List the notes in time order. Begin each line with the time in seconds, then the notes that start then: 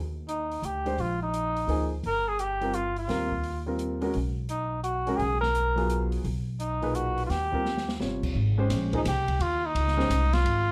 Already playing: D#2
0.29 D#4, closed hi-hat
0.52 open hi-hat
0.62 D2 G4, closed hi-hat
0.85 G#3 D4 G4 C5, open hi-hat
0.98 A#1 F4, open hi-hat
1.23 D#4
1.34 closed hi-hat
1.56 open hi-hat
1.67 D2 F3 A#3 D#4 G#4, open hi-hat
2.03 G1 A#4, open hi-hat
2.28 G#4
2.39 G4, closed hi-hat
2.61 G3 C4 F4 A#4, open hi-hat
2.74 F4, closed hi-hat
2.96 F4, open hi-hat
3.08 D#2 G3 C4 F4 A#4, snare, open hi-hat
3.32 kick
3.44 open hi-hat
3.66 G3 C4 F4 A#4
3.79 closed hi-hat
4.01 G#3 C#4 F#4 A#4, open hi-hat
4.14 B1, open hi-hat
4.49 D#4, closed hi-hat
4.83 F#4, closed hi-hat
5.07 G#3 C#4 F#4 A#4, open hi-hat
5.17 B1 G#4, open hi-hat
5.41 A#4, snare
5.55 closed hi-hat
5.76 F#3 B3 F4 G#4, open hi-hat
5.90 closed hi-hat
6.12 open hi-hat
6.25 B1, open hi-hat
6.60 D#4, closed hi-hat
6.82 A#2 D#4 G#4 B4, open hi-hat
6.95 F#4, closed hi-hat
7.18 open hi-hat
7.26 D#2 F4 G4, open hi-hat
7.30 snare
7.52 G3 C4 F4 A#4, kick
7.65 snare
7.77 snare
7.89 snare
8.00 G1 C3 G3 F4 C#5, snare
8.23 kick, crash
8.35 G#1
8.58 G#3 C#4 G4 C5
8.70 A#1, snare, hi-hat pedal, ride
8.93 F3 A#3 D#4 G#4, kick, ride
9.05 C2 G4, snare, hi-hat pedal, ride
9.28 kick, ride
9.39 D#2 F4, ride
9.66 D#4
9.75 C#2, ride
9.88 snare
9.97 G#3 C#4 G4 C5, snare
10.10 C2, hi-hat pedal, ride
10.33 F4, snare, ride
10.45 G#1, ride